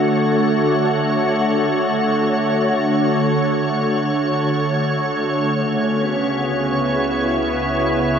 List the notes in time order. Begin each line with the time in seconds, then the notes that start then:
Already playing: D3 A3 F#4 C#5
5.55 C#2 C#3
5.79 B3
6.58 E4